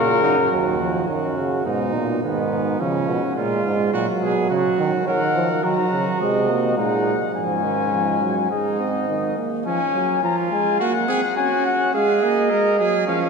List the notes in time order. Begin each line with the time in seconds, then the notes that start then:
Already playing: A#2 C#3 F#4 A#4
0.23 F#2 D#4
0.51 D#2 F#3 F#4
0.80 F3
1.08 F#2 D#3 F#4
1.37 C#3
1.65 G#2 B2 D#4
1.94 A#2
2.23 G#2 D#3 B3
2.80 C#3 F3 C#4
3.08 B2
3.36 A#2 G#3 F4
3.66 G#2
3.93 A#2 F#3 F#4
4.22 B2 G#4
4.50 C#3 F#4
4.79 D#3
5.07 D#3 F#3 A#4 F#5
5.35 F3
5.64 D#3 F#3 F#4 A#5
5.92 C#3
6.20 C3 G#3 D#5
6.48 A#3
6.76 A#2 G#3 D#4 F#5
7.34 G#2 F3 C#4 G#5
7.63 D#3
7.92 F3
8.21 F#3
8.50 G#2 G#3 D#4 D#5
8.80 C4
9.08 D#3
9.37 A#3
9.66 F3 C#4 G#5
9.95 F#3
10.23 F3 F4 A#5
10.51 G#3 G#5
10.80 A#3 F#4 F#5
11.08 C4 G#4
11.37 C#4 F#4 G#5
11.66 F#5
11.93 G#3 G#4 F5
12.23 A#3 D#5
12.50 G#3 A#4
12.79 F#3 G#4
13.07 F3 C#4 F5